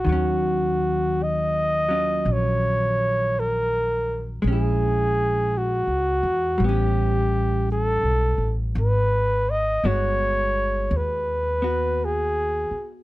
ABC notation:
X:1
M:4/4
L:1/16
Q:"Swing" 1/4=56
K:Ebm
V:1 name="Flugelhorn"
G4 e4 d4 B3 z | A4 G4 =G4 =A3 z | c2 e2 d4 c4 A3 z |]
V:2 name="Hollow-body jazz guitar"
[E,G,D]6 [G,DF]8- [G,DF]2 | [A,D_F]8 [=G,=B,^C]8 | z4 [A,CG]6 [CG]6 |]
V:3 name="Upright bass" clef=bass
E,,8 B,,,8 | B,,,4- (3B,,,2 D,,2 _F,,2 =A,,,4- (3A,,,2 =B,,,2 A,,,2 | A,,,4 =G,,,4 E,,6 z2 |]